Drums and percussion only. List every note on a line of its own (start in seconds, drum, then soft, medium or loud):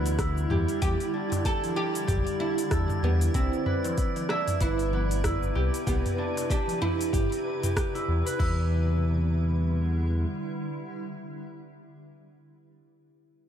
0.06 open hi-hat soft
0.06 darbuka ka medium
0.06 cabasa medium
0.19 kick loud
0.19 cross-stick medium
0.19 open hi-hat medium
0.19 cabasa medium
0.37 cabasa soft
0.50 mid tom medium
0.50 darbuka ka medium
0.68 open hi-hat soft
0.68 cabasa medium
0.82 kick medium
0.82 open hi-hat soft
0.82 cabasa medium
1.00 open hi-hat soft
1.00 cabasa soft
1.32 mid tom medium
1.32 open hi-hat soft
1.32 darbuka tek medium
1.32 cabasa medium
1.45 kick loud
1.45 open hi-hat medium
1.45 cabasa medium
1.64 open hi-hat soft
1.64 darbuka tek medium
1.64 darbuka dum medium
1.64 cabasa soft
1.77 darbuka tek medium
1.95 open hi-hat soft
1.95 cabasa medium
2.08 kick loud
2.08 mid tom medium
2.08 open hi-hat medium
2.08 cabasa medium
2.27 open hi-hat soft
2.27 cabasa soft
2.40 darbuka ka soft
2.58 open hi-hat soft
2.58 darbuka ka medium
2.58 cabasa medium
2.71 kick loud
2.71 cross-stick medium
2.71 open hi-hat medium
2.71 cabasa soft
2.90 mid tom medium
2.90 darbuka ka medium
2.90 cabasa soft
3.21 open hi-hat soft
3.21 cabasa medium
3.34 kick loud
3.34 open hi-hat medium
3.34 cabasa soft
3.53 cabasa soft
3.66 mid tom medium
3.66 darbuka ka soft
3.84 open hi-hat soft
3.84 darbuka tek medium
3.84 darbuka dum medium
3.84 cabasa medium
3.98 kick loud
3.98 open hi-hat medium
3.98 cabasa medium
4.16 open hi-hat soft
4.16 darbuka tek medium
4.16 darbuka dum medium
4.16 cabasa soft
4.29 cross-stick medium
4.29 darbuka tek medium
4.48 mid tom medium
4.48 open hi-hat soft
4.48 cabasa medium
4.61 kick loud
4.61 open hi-hat medium
4.61 cabasa medium
4.79 open hi-hat soft
4.79 cabasa soft
4.92 darbuka dum medium
5.11 open hi-hat soft
5.11 darbuka ka medium
5.11 cabasa medium
5.24 kick loud
5.24 cross-stick medium
5.24 mid tom medium
5.24 open hi-hat medium
5.24 cabasa medium
5.43 cabasa soft
5.56 darbuka ka medium
5.74 open hi-hat soft
5.74 cabasa medium
5.87 kick loud
5.87 open hi-hat medium
5.87 cabasa medium
6.06 mid tom medium
6.06 open hi-hat soft
6.06 cabasa soft
6.19 darbuka ka soft
6.37 open hi-hat soft
6.37 darbuka tek medium
6.37 cabasa medium
6.50 kick loud
6.50 open hi-hat medium
6.50 cabasa medium
6.68 open hi-hat soft
6.68 darbuka tek medium
6.68 darbuka dum medium
6.68 cabasa soft
6.82 mid tom medium
6.82 darbuka tek medium
7.01 open hi-hat soft
7.01 cabasa medium
7.13 kick loud
7.13 open hi-hat medium
7.13 cabasa medium
7.32 open hi-hat soft
7.32 cabasa soft
7.45 darbuka ka medium
7.63 mid tom medium
7.63 open hi-hat soft
7.63 darbuka ka medium
7.63 cabasa medium
7.77 kick loud
7.77 cross-stick medium
7.77 open hi-hat medium
7.77 cabasa medium
7.95 open hi-hat soft
7.95 darbuka ka medium
7.95 cabasa soft
8.27 open hi-hat soft
8.27 cabasa medium
8.40 kick loud
8.40 crash medium